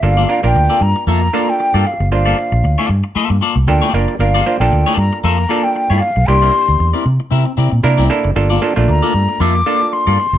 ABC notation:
X:1
M:4/4
L:1/16
Q:"Swing 16ths" 1/4=115
K:Gdor
V:1 name="Flute"
f3 g3 b2 b3 g3 f2 | f6 z6 g2 d2 | f3 g3 b2 b3 g3 f2 | c'6 z8 z2 |
z4 b4 d'4 c'4 |]
V:2 name="Clean electric guitar"
z [B,FAd] z3 [B,FAd] z2 [B,FAe] z [B,FAd] z2 [B,FAd] z2 | z [B,FAd] z3 [B,FAd]2 z [B,FAe]2 [B,FAd] z2 [B,FAd]2 z | z [B,FAd] z3 [B,FAd]2 z [B,FAe] z [B,FAd] z2 [B,FAd]2 z | z [CEBd] z3 [CEBd] z2 [CEBe] z [CEBd] z2 [CEBd] z2 |
z [B,FAd] z3 [B,FAd] z2 [B,FAe] z [B,FAd] z2 [B,FAd] z2 |]
V:3 name="Clav"
[B,DFA]2 [B,DFB] [B,DFB]4- [B,DFB] z2 [B,DFA]4- [B,DFA] z | [B,DFc]6 z6 [B,DFA]2 [B,DFB]2 | [B,DFB]2 [B,DFc] [B,DFA]4- [B,DFA] z2 [B,DFA]4- [B,DFA] z | [B,DEG]6 z6 [B,DEB]2 [B,DEA]2 |
[B,DFA]2 [B,DFA] [A,B,DF]4- [A,B,DF] z2 [B,DFA]4- [B,DFA] z |]
V:4 name="Fingered electric bass" clef=bass
G,,,2 z B,,, D,, z G,, z F,,2 z3 G,, z ^F,,, | G,,,2 z B,,, D,, z G,, z2 G,, z C,, D,, z ^F,,, z | G,,,2 z B,,, D,, z G,, z F,,2 z3 G,, z =B,,, | C,,2 z D,, E,, z C, z C, z C, B,, C, C,, z ^F,,, |
G,,,2 z B,,, D,, z G,, z F,,2 z3 G,, z ^F,,, |]